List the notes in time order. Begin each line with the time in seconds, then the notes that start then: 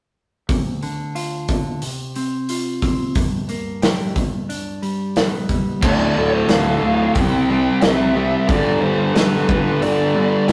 0.49 D2, kick, open hi-hat
0.82 D3, open hi-hat
1.15 F4, open hi-hat
1.48 D3, kick, open hi-hat
1.82 C3, open hi-hat
2.16 C4, open hi-hat
2.49 F4, open hi-hat
2.82 C4, kick, open hi-hat
3.15 G2, kick, open hi-hat
3.49 A#3, open hi-hat
3.82 G4, snare, open hi-hat
4.15 G2, kick, open hi-hat
4.49 D4, open hi-hat
4.82 G3, open hi-hat
5.16 B3, snare, open hi-hat
5.49 G3, kick, open hi-hat
5.82 D1 D2 A2 D3 D5, kick, crash
6.15 D1 D2 A2 D3
6.34 C5
6.48 D1 D2 A2 D3 F5, snare, open hi-hat
6.82 D1 D2 A2 D3
7.14 C2 C3 G3 C4 G5, kick, open hi-hat
7.49 C3 G3 C4
7.82 C2 C3 G3 C4 E5, snare, open hi-hat
8.16 C3 G3 C4
8.48 G1 G2 D3 G3 D5, kick, open hi-hat
8.81 G1 G2 D3 G3 C5
9.14 G1 G2 D3 G3 B4, snare, open hi-hat
9.48 G1 G2 D3 G3, kick
9.81 G1 G2 D3 G3 D5, open hi-hat
10.15 G2 D3 G3
10.48 G1 G2 D3 G5, open hi-hat